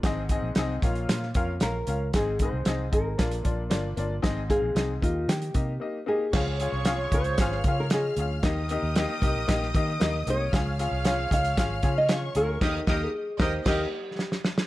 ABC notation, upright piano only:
X:1
M:4/4
L:1/8
Q:1/4=115
K:Dblyd
V:1 name="Upright piano"
[CEAe] [CEAe] [CEAe] [DFBf]2 [DFBf] [DFBf] [DFBf] | [CEAe] [CEAe] [CEAe] [CEAe] [B,=DF=d] [B,DFd] [B,DFd] [B,DFd] | [CEAe] [CEAf] [CEAe] [B,EGe]2 [B,EGe] [B,EGe] [B,EGe] | [DFAf] [DFAf] [DFAf] [DFAf] [DFAf] [DFAf] [DFAe] [DFAf] |
[B,EGe] [B,EGe] [B,EGe] [B,EGe] [B,EGe] [B,EGe] [B,EGe] [B,EGe] | [DFAf] [DFAf] [DFAf] [DFAf] [DFAf] [DFAf] [DFAf] [DFAf] | [E,B,EGe] [B,EGe] z [B,EGe] [B,EGe] z3 |]
V:2 name="Upright piano" clef=bass
A,,3 B,,3 z2 | A,,3 z B,,3 z | A,,3 E,3 z2 | z8 |
E,3 z4 z | z8 | z8 |]